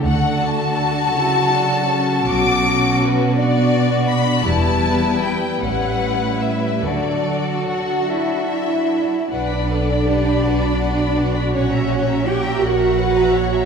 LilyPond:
<<
  \new Staff \with { instrumentName = "Violin section" } { \time 6/8 \key d \major \tempo 4. = 54 fis''8 a''2~ a''8 | d'''4 b'8 d''4 b''8 | a''4 g''8 fis''4 e''8 | d''4 fis''8 e''4. |
\key b \minor d''2. | cis''4 g''8 fis''4. | }
  \new Staff \with { instrumentName = "Violin section" } { \time 6/8 \key d \major << { a'2.~ | a'4. d''4. | b'4. b'4. | a'2~ a'8 r8 |
\key b \minor <b' fis''>16 <d'' b''>16 <b' fis''>16 <d'' b''>16 <b' fis''>16 <d'' b''>16 <b' fis''>16 <d'' b''>16 <b' fis''>16 <d'' b''>16 <b' fis''>16 <d'' b''>16 | <cis'' fis''>16 <e'' ais''>16 <cis'' fis''>16 <e'' ais''>16 <cis'' fis''>16 <e'' ais''>16 <cis'' fis''>16 <e'' ais''>16 <cis'' fis''>16 <e'' ais''>16 <cis'' fis''>16 <e'' ais''>16 | } \\ { fis'2. | fis'4. fis'4. | e'4. e'4. | fis'2~ fis'8 r8 |
r2. | r2. | } >> }
  \new Staff \with { instrumentName = "Viola section" } { \time 6/8 \key d \major << { d'4. e'8 d'8 cis'8~ | cis'4. d'4. | b4. cis'4. | d'2~ d'8 r8 |
\key b \minor b'8 a'8 g'8 fis'4.~ | fis'4. ais'8 b'8 cis''8 | } \\ { a4. fis4.~ | fis4. b4. | g4. g4. | fis2~ fis8 r8 |
r2. | r2. | } >> }
  \new Staff \with { instrumentName = "Cello section" } { \clef bass \time 6/8 \key d \major d4. cis4. | b,2. | e,4. a,4. | d4 fis'8 e'4. |
\key b \minor d'2. | cis'4 g'8 fis'4. | }
  \new Staff \with { instrumentName = "Double bass section" } { \clef bass \time 6/8 \key d \major d,4 r2 | b,,4 r2 | e,,4 r8 a,,4 r8 | d,4 r2 |
\key b \minor b,,4. b,,4. | ais,,4. ais,,4. | }
>>